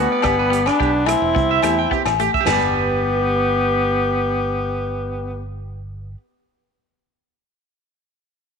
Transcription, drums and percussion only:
0, 0, Header, 1, 2, 480
1, 0, Start_track
1, 0, Key_signature, 1, "major"
1, 0, Tempo, 554170
1, 213, Time_signature, 4, 2, 24, 8
1, 7445, End_track
2, 0, Start_track
2, 0, Title_t, "Drums"
2, 194, Note_on_c, 9, 68, 66
2, 205, Note_on_c, 9, 37, 70
2, 212, Note_on_c, 9, 36, 87
2, 281, Note_off_c, 9, 68, 0
2, 291, Note_off_c, 9, 37, 0
2, 299, Note_off_c, 9, 36, 0
2, 458, Note_on_c, 9, 42, 51
2, 544, Note_off_c, 9, 42, 0
2, 571, Note_on_c, 9, 68, 67
2, 582, Note_on_c, 9, 37, 62
2, 657, Note_off_c, 9, 68, 0
2, 669, Note_off_c, 9, 37, 0
2, 697, Note_on_c, 9, 36, 72
2, 784, Note_off_c, 9, 36, 0
2, 922, Note_on_c, 9, 68, 72
2, 940, Note_on_c, 9, 37, 78
2, 940, Note_on_c, 9, 42, 49
2, 1008, Note_off_c, 9, 68, 0
2, 1027, Note_off_c, 9, 37, 0
2, 1027, Note_off_c, 9, 42, 0
2, 1178, Note_on_c, 9, 36, 94
2, 1265, Note_off_c, 9, 36, 0
2, 1407, Note_on_c, 9, 68, 64
2, 1414, Note_on_c, 9, 37, 66
2, 1414, Note_on_c, 9, 42, 47
2, 1494, Note_off_c, 9, 68, 0
2, 1501, Note_off_c, 9, 37, 0
2, 1501, Note_off_c, 9, 42, 0
2, 1657, Note_on_c, 9, 36, 64
2, 1743, Note_off_c, 9, 36, 0
2, 1780, Note_on_c, 9, 68, 70
2, 1785, Note_on_c, 9, 37, 62
2, 1867, Note_off_c, 9, 68, 0
2, 1871, Note_off_c, 9, 37, 0
2, 1900, Note_on_c, 9, 42, 40
2, 1987, Note_off_c, 9, 42, 0
2, 2030, Note_on_c, 9, 36, 71
2, 2116, Note_off_c, 9, 36, 0
2, 2136, Note_on_c, 9, 68, 99
2, 2142, Note_on_c, 9, 38, 79
2, 2142, Note_on_c, 9, 43, 70
2, 2142, Note_on_c, 9, 55, 64
2, 2222, Note_off_c, 9, 68, 0
2, 2228, Note_off_c, 9, 38, 0
2, 2228, Note_off_c, 9, 43, 0
2, 2228, Note_off_c, 9, 55, 0
2, 7445, End_track
0, 0, End_of_file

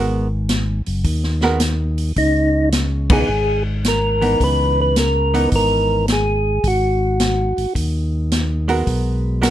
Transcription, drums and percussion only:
0, 0, Header, 1, 2, 480
1, 0, Start_track
1, 0, Key_signature, 5, "minor"
1, 0, Tempo, 559180
1, 1858, Time_signature, 4, 2, 24, 8
1, 8157, End_track
2, 0, Start_track
2, 0, Title_t, "Drums"
2, 420, Note_on_c, 9, 42, 54
2, 423, Note_on_c, 9, 38, 69
2, 506, Note_off_c, 9, 42, 0
2, 509, Note_off_c, 9, 38, 0
2, 740, Note_on_c, 9, 46, 35
2, 826, Note_off_c, 9, 46, 0
2, 895, Note_on_c, 9, 46, 49
2, 899, Note_on_c, 9, 36, 36
2, 981, Note_off_c, 9, 46, 0
2, 984, Note_off_c, 9, 36, 0
2, 1060, Note_on_c, 9, 38, 28
2, 1146, Note_off_c, 9, 38, 0
2, 1209, Note_on_c, 9, 38, 39
2, 1295, Note_off_c, 9, 38, 0
2, 1371, Note_on_c, 9, 42, 53
2, 1373, Note_on_c, 9, 38, 64
2, 1457, Note_off_c, 9, 42, 0
2, 1459, Note_off_c, 9, 38, 0
2, 1697, Note_on_c, 9, 46, 37
2, 1783, Note_off_c, 9, 46, 0
2, 1857, Note_on_c, 9, 46, 44
2, 1858, Note_on_c, 9, 36, 31
2, 1943, Note_off_c, 9, 46, 0
2, 1944, Note_off_c, 9, 36, 0
2, 2338, Note_on_c, 9, 42, 53
2, 2340, Note_on_c, 9, 38, 66
2, 2423, Note_off_c, 9, 42, 0
2, 2426, Note_off_c, 9, 38, 0
2, 2658, Note_on_c, 9, 51, 75
2, 2660, Note_on_c, 9, 36, 83
2, 2744, Note_off_c, 9, 51, 0
2, 2746, Note_off_c, 9, 36, 0
2, 3300, Note_on_c, 9, 42, 53
2, 3303, Note_on_c, 9, 38, 68
2, 3386, Note_off_c, 9, 42, 0
2, 3389, Note_off_c, 9, 38, 0
2, 3623, Note_on_c, 9, 46, 34
2, 3709, Note_off_c, 9, 46, 0
2, 3780, Note_on_c, 9, 36, 33
2, 3783, Note_on_c, 9, 46, 41
2, 3866, Note_off_c, 9, 36, 0
2, 3868, Note_off_c, 9, 46, 0
2, 4258, Note_on_c, 9, 42, 56
2, 4261, Note_on_c, 9, 38, 65
2, 4344, Note_off_c, 9, 42, 0
2, 4347, Note_off_c, 9, 38, 0
2, 4587, Note_on_c, 9, 46, 40
2, 4673, Note_off_c, 9, 46, 0
2, 4735, Note_on_c, 9, 46, 49
2, 4739, Note_on_c, 9, 36, 34
2, 4820, Note_off_c, 9, 46, 0
2, 4825, Note_off_c, 9, 36, 0
2, 5219, Note_on_c, 9, 42, 56
2, 5221, Note_on_c, 9, 38, 67
2, 5305, Note_off_c, 9, 42, 0
2, 5307, Note_off_c, 9, 38, 0
2, 5698, Note_on_c, 9, 36, 29
2, 5698, Note_on_c, 9, 46, 44
2, 5784, Note_off_c, 9, 36, 0
2, 5784, Note_off_c, 9, 46, 0
2, 6178, Note_on_c, 9, 42, 55
2, 6180, Note_on_c, 9, 38, 73
2, 6264, Note_off_c, 9, 42, 0
2, 6266, Note_off_c, 9, 38, 0
2, 6505, Note_on_c, 9, 46, 36
2, 6591, Note_off_c, 9, 46, 0
2, 6655, Note_on_c, 9, 36, 37
2, 6659, Note_on_c, 9, 46, 48
2, 6741, Note_off_c, 9, 36, 0
2, 6745, Note_off_c, 9, 46, 0
2, 7138, Note_on_c, 9, 42, 51
2, 7141, Note_on_c, 9, 38, 67
2, 7224, Note_off_c, 9, 42, 0
2, 7227, Note_off_c, 9, 38, 0
2, 7456, Note_on_c, 9, 46, 36
2, 7542, Note_off_c, 9, 46, 0
2, 7614, Note_on_c, 9, 36, 34
2, 7614, Note_on_c, 9, 46, 40
2, 7699, Note_off_c, 9, 46, 0
2, 7700, Note_off_c, 9, 36, 0
2, 8095, Note_on_c, 9, 42, 55
2, 8097, Note_on_c, 9, 38, 72
2, 8157, Note_off_c, 9, 38, 0
2, 8157, Note_off_c, 9, 42, 0
2, 8157, End_track
0, 0, End_of_file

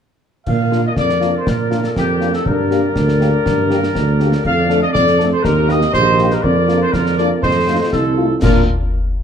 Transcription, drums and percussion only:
0, 0, Header, 1, 2, 480
1, 0, Start_track
1, 0, Key_signature, -2, "major"
1, 0, Tempo, 497100
1, 456, Time_signature, 2, 2, 24, 8
1, 8915, End_track
2, 0, Start_track
2, 0, Title_t, "Drums"
2, 452, Note_on_c, 9, 35, 68
2, 452, Note_on_c, 9, 49, 41
2, 548, Note_off_c, 9, 35, 0
2, 548, Note_off_c, 9, 49, 0
2, 698, Note_on_c, 9, 38, 47
2, 794, Note_off_c, 9, 38, 0
2, 931, Note_on_c, 9, 35, 64
2, 931, Note_on_c, 9, 38, 56
2, 1028, Note_off_c, 9, 35, 0
2, 1028, Note_off_c, 9, 38, 0
2, 1055, Note_on_c, 9, 38, 52
2, 1152, Note_off_c, 9, 38, 0
2, 1173, Note_on_c, 9, 38, 43
2, 1270, Note_off_c, 9, 38, 0
2, 1417, Note_on_c, 9, 35, 78
2, 1417, Note_on_c, 9, 38, 69
2, 1513, Note_off_c, 9, 35, 0
2, 1513, Note_off_c, 9, 38, 0
2, 1656, Note_on_c, 9, 38, 52
2, 1753, Note_off_c, 9, 38, 0
2, 1774, Note_on_c, 9, 38, 52
2, 1871, Note_off_c, 9, 38, 0
2, 1897, Note_on_c, 9, 35, 55
2, 1897, Note_on_c, 9, 38, 69
2, 1993, Note_off_c, 9, 35, 0
2, 1993, Note_off_c, 9, 38, 0
2, 2133, Note_on_c, 9, 38, 40
2, 2230, Note_off_c, 9, 38, 0
2, 2255, Note_on_c, 9, 38, 50
2, 2352, Note_off_c, 9, 38, 0
2, 2374, Note_on_c, 9, 35, 79
2, 2470, Note_off_c, 9, 35, 0
2, 2617, Note_on_c, 9, 38, 49
2, 2714, Note_off_c, 9, 38, 0
2, 2855, Note_on_c, 9, 35, 61
2, 2855, Note_on_c, 9, 38, 69
2, 2952, Note_off_c, 9, 35, 0
2, 2952, Note_off_c, 9, 38, 0
2, 2978, Note_on_c, 9, 38, 54
2, 3074, Note_off_c, 9, 38, 0
2, 3099, Note_on_c, 9, 38, 46
2, 3196, Note_off_c, 9, 38, 0
2, 3340, Note_on_c, 9, 35, 77
2, 3340, Note_on_c, 9, 38, 71
2, 3437, Note_off_c, 9, 35, 0
2, 3437, Note_off_c, 9, 38, 0
2, 3578, Note_on_c, 9, 38, 53
2, 3674, Note_off_c, 9, 38, 0
2, 3701, Note_on_c, 9, 38, 54
2, 3798, Note_off_c, 9, 38, 0
2, 3818, Note_on_c, 9, 35, 66
2, 3818, Note_on_c, 9, 38, 64
2, 3914, Note_off_c, 9, 35, 0
2, 3914, Note_off_c, 9, 38, 0
2, 4054, Note_on_c, 9, 38, 43
2, 4151, Note_off_c, 9, 38, 0
2, 4174, Note_on_c, 9, 38, 55
2, 4270, Note_off_c, 9, 38, 0
2, 4294, Note_on_c, 9, 35, 74
2, 4294, Note_on_c, 9, 49, 29
2, 4391, Note_off_c, 9, 35, 0
2, 4391, Note_off_c, 9, 49, 0
2, 4537, Note_on_c, 9, 38, 52
2, 4633, Note_off_c, 9, 38, 0
2, 4778, Note_on_c, 9, 35, 66
2, 4778, Note_on_c, 9, 38, 65
2, 4875, Note_off_c, 9, 35, 0
2, 4875, Note_off_c, 9, 38, 0
2, 4897, Note_on_c, 9, 38, 47
2, 4994, Note_off_c, 9, 38, 0
2, 5020, Note_on_c, 9, 38, 48
2, 5117, Note_off_c, 9, 38, 0
2, 5257, Note_on_c, 9, 35, 72
2, 5257, Note_on_c, 9, 38, 68
2, 5353, Note_off_c, 9, 35, 0
2, 5353, Note_off_c, 9, 38, 0
2, 5494, Note_on_c, 9, 38, 52
2, 5591, Note_off_c, 9, 38, 0
2, 5613, Note_on_c, 9, 38, 56
2, 5709, Note_off_c, 9, 38, 0
2, 5732, Note_on_c, 9, 35, 66
2, 5732, Note_on_c, 9, 38, 65
2, 5828, Note_off_c, 9, 35, 0
2, 5828, Note_off_c, 9, 38, 0
2, 5970, Note_on_c, 9, 38, 43
2, 6066, Note_off_c, 9, 38, 0
2, 6089, Note_on_c, 9, 38, 48
2, 6186, Note_off_c, 9, 38, 0
2, 6216, Note_on_c, 9, 35, 73
2, 6312, Note_off_c, 9, 35, 0
2, 6455, Note_on_c, 9, 38, 50
2, 6552, Note_off_c, 9, 38, 0
2, 6695, Note_on_c, 9, 35, 67
2, 6695, Note_on_c, 9, 38, 58
2, 6792, Note_off_c, 9, 35, 0
2, 6792, Note_off_c, 9, 38, 0
2, 6818, Note_on_c, 9, 38, 52
2, 6914, Note_off_c, 9, 38, 0
2, 6935, Note_on_c, 9, 38, 39
2, 7032, Note_off_c, 9, 38, 0
2, 7174, Note_on_c, 9, 35, 79
2, 7174, Note_on_c, 9, 38, 58
2, 7271, Note_off_c, 9, 35, 0
2, 7271, Note_off_c, 9, 38, 0
2, 7654, Note_on_c, 9, 35, 61
2, 7654, Note_on_c, 9, 38, 57
2, 7751, Note_off_c, 9, 35, 0
2, 7751, Note_off_c, 9, 38, 0
2, 8130, Note_on_c, 9, 35, 88
2, 8130, Note_on_c, 9, 38, 81
2, 8130, Note_on_c, 9, 49, 70
2, 8227, Note_off_c, 9, 35, 0
2, 8227, Note_off_c, 9, 38, 0
2, 8227, Note_off_c, 9, 49, 0
2, 8915, End_track
0, 0, End_of_file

